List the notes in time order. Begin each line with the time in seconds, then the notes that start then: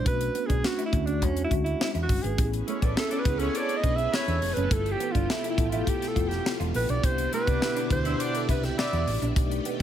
0.05 B1 A3 C#4 D4 F#4 B4, kick, closed hi-hat
0.20 muted clean electric guitar stroke, closed hi-hat
0.35 B3, closed hi-hat
0.47 B1 D4 G#4, kick, closed hi-hat
0.63 A3 C#4 D4 F#4, snare
0.78 E4, closed hi-hat
0.86 E4
0.92 D2 A3 C#4 D4 F#4, muted clean electric guitar stroke, kick, closed hi-hat
1.06 D4, closed hi-hat
1.21 E2 G#3 C#4 D4 F#4, kick, closed hi-hat
1.37 closed hi-hat
1.45 E4
1.51 D2 G#3 C#4 D4 E4 F#4, kick, closed hi-hat
1.64 E4, closed hi-hat
1.81 E4, snare
1.95 E2 E4, closed hi-hat
2.03 F#4
2.09 G1, muted clean electric guitar stroke, kick, open hi-hat
2.23 G#1 B3 G#4, closed hi-hat
2.38 A1 A3 B3 C#4 E4 G4 G#4 B4, kick, closed hi-hat
2.45 G#4
2.53 muted clean electric guitar stroke, closed hi-hat
2.67 G#3 A3 C#4 E4 C#5, closed hi-hat
2.81 A1 B3 D4 A4 D5, kick, closed hi-hat
2.96 B3 C#4 E4 G#4 A4 B4 E5, snare
3.10 C#4 D4 A4 D5, closed hi-hat
3.19 B4
3.25 C#2 B3 C4 E4 G#4, kick, closed hi-hat
3.32 C#4
3.39 G#3 C#4 E4 A4 C#5, closed hi-hat
3.54 D4 A4 C#5 D5, closed hi-hat
3.69 closed hi-hat
3.77 D#5
3.84 B1 D4, kick, closed hi-hat
3.97 E5, closed hi-hat
4.12 C#4 E4 B4 C#5 E5, snare
4.27 E2 D4, closed hi-hat
4.42 F1, muted clean electric guitar stroke, open hi-hat
4.53 F#1 C#4 B4, closed hi-hat
4.71 G1 B2 F3 B3 E4 F4 G4 A4, kick, closed hi-hat
4.86 muted clean electric guitar stroke, closed hi-hat
4.92 G4
5.00 B3, closed hi-hat
5.11 G1 D4 F4, kick, closed hi-hat
5.29 B3 E4 F4 A4, snare
5.44 E4, closed hi-hat
5.50 E4
5.58 A1 B3 E4 F4 A4, muted clean electric guitar stroke, kick, closed hi-hat
5.70 E4 F4, closed hi-hat
5.87 G4, kick, closed hi-hat
6.02 snare, closed hi-hat
6.08 A4
6.16 F1 B3 E4 F4 A4, kick, closed hi-hat
6.28 G4, snare, closed hi-hat
6.46 snare
6.60 E1 F4, closed hi-hat
6.74 A#1 B4, muted clean electric guitar stroke, open hi-hat
6.89 B1 D4 D5, closed hi-hat
7.03 C2 D3 B3 D4 E4 G4 C5, kick, closed hi-hat
7.18 muted clean electric guitar stroke, closed hi-hat
7.32 G3 A3 C4 E4 B4 C5, closed hi-hat
7.46 C2 B3 D4 G4 D5, kick, closed hi-hat
7.61 B3 D4 E4 G4 E5, snare
7.75 B3 D4 G4 D5, closed hi-hat
7.90 D2 B2 D4 E4 G4 C5, muted clean electric guitar stroke, kick, closed hi-hat
8.04 G3 C4 D4 E4 C5, closed hi-hat
8.19 B3 D4 G4 D5, closed hi-hat
8.35 A4, closed hi-hat
8.49 C2 E4 B4, kick, closed hi-hat
8.63 G4, snare, closed hi-hat
8.78 B3 E4 G4 D5 E5, snare
8.93 E2 E4, closed hi-hat
9.07 A1, muted clean electric guitar stroke, open hi-hat
9.21 A#1 D4, closed hi-hat
9.35 B1 D#3 A3 D4 D#4 G4, kick, closed hi-hat
9.52 muted clean electric guitar stroke, closed hi-hat
9.65 B3, closed hi-hat